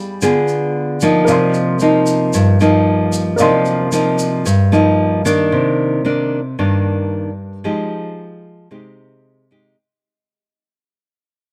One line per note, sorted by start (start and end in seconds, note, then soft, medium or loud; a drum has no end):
0.00 0.19 G3 medium
0.00 1.22 G#4 medium
0.00 1.23 F5 soft
0.00 1.24 G5 medium
0.00 1.25 B5 medium
0.22 1.25 D3 medium
0.22 0.97 B3 medium
0.22 0.97 F4 medium
0.22 0.98 G#4 medium
0.22 shaker medium
0.48 shaker soft
1.01 1.77 F3 medium
1.01 1.77 A#3 medium
1.01 1.77 D#4 medium
1.01 shaker medium
1.25 2.31 C3 medium
1.25 3.34 A#4 medium
1.25 3.35 D5 soft
1.25 3.36 D#5 medium
1.25 shaker medium
1.30 3.36 F5 medium
1.30 3.38 C6 medium
1.54 shaker soft
1.79 2.56 F3 medium
1.79 2.56 A#3 medium
1.79 2.57 D#4 medium
1.79 shaker soft
2.06 shaker medium
2.33 3.37 G2 medium
2.33 shaker medium
2.60 3.35 F3 medium
2.60 3.36 A#3 medium
2.60 3.36 D#4 medium
2.60 shaker soft
3.13 shaker medium
3.36 4.43 C3 medium
3.36 3.88 F3 medium
3.36 5.46 A#4 medium
3.36 5.47 D5 medium
3.36 5.47 D#5 medium
3.36 5.48 F5 medium
3.36 shaker medium
3.40 3.89 A#3 medium
3.40 3.89 D#4 medium
3.40 5.49 C6 medium
3.65 shaker soft
3.92 4.45 F3 soft
3.92 4.45 A#3 medium
3.92 4.46 D#4 medium
3.92 shaker medium
4.19 shaker medium
4.46 5.49 G2 medium
4.46 shaker medium
4.72 5.21 F3 medium
4.72 5.21 A#3 medium
4.72 5.21 D#4 medium
4.72 shaker soft
5.25 6.00 D#3 medium
5.25 6.01 A#3 medium
5.25 6.01 D4 medium
5.25 shaker medium
5.52 6.55 C3 medium
6.05 6.39 D#3 soft
6.05 6.39 A#3 medium
6.05 6.39 D4 medium
6.59 7.62 G2 medium
6.59 7.29 D#3 medium
6.59 7.30 A#3 medium
6.59 7.30 D4 medium
7.64 8.68 F3 medium
7.64 8.66 G#3 soft
7.64 8.66 D#4 medium
7.64 8.66 G4 medium
8.71 9.74 C3 medium
8.71 9.46 G#3 medium
8.71 9.46 D#4 medium
8.71 9.46 G4 medium
9.51 9.75 G#3 medium
9.51 9.75 D#4 medium
9.51 9.75 G4 medium